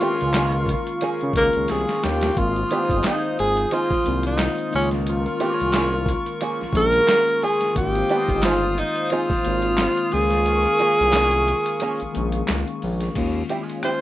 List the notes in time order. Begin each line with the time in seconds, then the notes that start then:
Already playing: D#3 G#3 A#3 C#4 F4 A#4 F5 C#6
0.01 E3 A3 C4 G4, closed hi-hat
0.14 F3 A#3 C#4 G#4
0.21 C#2, closed hi-hat
0.34 F3 A#3 C#4 G#4, snare, clap, closed hi-hat
0.52 closed hi-hat
0.66 kick, closed hi-hat
0.87 closed hi-hat
1.01 F3 A#3 C#4 G#4, closed hi-hat
1.21 C#3, closed hi-hat
1.33 C#2 D#3 G#3 A#3 C#4 A#4, kick, closed hi-hat
1.38 G#4
1.53 C#2, closed hi-hat
1.68 C2 G#4, snare, closed hi-hat
1.88 snare, closed hi-hat
2.03 D#2 G4, snare, open hi-hat
2.21 snare, closed hi-hat
2.34 G#1 D#3 G#3 A#3 C4 C5 D#6, kick, closed hi-hat
2.38 F4
2.56 closed hi-hat
2.71 E3 B3 D4 G4, closed hi-hat
2.84 F3 C4 D#4 G#4
2.89 G1, kick, closed hi-hat
3.04 F3 C4 D#4 G#4, snare, clap, closed hi-hat
3.39 G#1 G#4, closed hi-hat
3.57 closed hi-hat
3.71 F3 C4 D#4 F4 G#4, closed hi-hat
3.91 C2, kick, snare
4.03 C2 D#3 G#3 A#3 C4, closed hi-hat
4.09 F4
4.23 D#4, closed hi-hat
4.38 snare, clap, closed hi-hat
4.58 closed hi-hat
4.71 C#2 D#3 G#3 A#3 C#4 A#4 C#6, open hi-hat
4.75 C#4 F4
4.91 snare, closed hi-hat
5.07 F4, closed hi-hat
5.26 closed hi-hat
5.40 E3 A3 C4 G4, closed hi-hat
5.54 F3 A#3 C#4 G#4
5.60 C2, closed hi-hat
5.73 F3 A#3 C#4 G#4, snare, clap, closed hi-hat
6.06 kick, closed hi-hat
6.26 closed hi-hat
6.41 F3 A#3 C#4 G#4, closed hi-hat
6.61 A#1, snare
6.73 A#1 D#3 G#3 A#3 C#4, kick, closed hi-hat
6.77 G#4 A#4
6.92 closed hi-hat
7.08 snare, clap, closed hi-hat
7.28 closed hi-hat
7.42 F3 A#3 C#4 G#4, open hi-hat
7.61 snare, closed hi-hat
7.74 G#1 D#3 G#3 A#3 C4 F4 G4 C5 F5 D#6, kick, closed hi-hat
7.79 D#4
7.85 F4
7.95 closed hi-hat
8.09 E3 B3 D4 G4, closed hi-hat
8.23 F3 C4 D#4 G#4
8.28 G1, kick, closed hi-hat
8.43 F3 C4 D#4 F4 G#4, snare, clap, closed hi-hat
8.78 D#4, closed hi-hat
8.96 closed hi-hat
9.10 F3 C4 D#4 F4 G#4, closed hi-hat
9.30 G#1, kick, snare
9.42 D#3 G#3 A#3 C4, closed hi-hat
9.47 G#1 F4
9.62 closed hi-hat
9.77 snare, clap, closed hi-hat
9.97 closed hi-hat
10.10 C#2 D#3 G#3 A#3 C#4 G#4 A#4 C#6, open hi-hat
10.15 D#4
10.22 F4
10.30 snare, closed hi-hat
10.46 closed hi-hat
10.65 closed hi-hat
10.79 F3 A#3 C#4 G#4, closed hi-hat
10.99 C2, closed hi-hat
11.13 F3 A#3 C#4 G#4, snare, clap, closed hi-hat
11.31 closed hi-hat
11.48 closed hi-hat
11.66 closed hi-hat
11.80 F3 A#3 C#4 G#4, closed hi-hat
12.00 A#1, closed hi-hat
12.12 D#3 G#3 A#3 C#4, closed hi-hat
12.16 A#1 G#4
12.32 closed hi-hat
12.47 C#2, snare, clap, closed hi-hat
12.68 closed hi-hat
12.82 A#1, open hi-hat
13.00 snare, closed hi-hat
13.13 D#2 D#3 G3 A#3 C#4, kick, closed hi-hat, crash
13.18 G#3 F4
13.49 G3 C4 E4 G4, closed hi-hat
13.63 G#3 C#4 F4 G#4
13.70 closed hi-hat
13.83 G#3 C#4 F4 G#4 C5, cross-stick, closed hi-hat